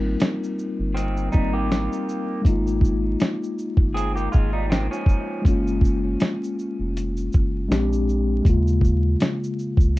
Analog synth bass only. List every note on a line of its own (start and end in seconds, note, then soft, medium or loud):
0.00 0.16 G#1 loud
0.79 1.29 G1 medium
1.35 1.88 G#1 medium
2.45 3.16 G#1 loud
3.77 4.28 G1 medium
4.35 4.88 G#1 loud
5.45 6.16 F#1 loud
6.79 7.29 F1 medium
7.35 7.68 F#1 medium
7.71 8.41 A#1 loud
8.45 9.16 D#2 loud
9.78 9.99 C#2 loud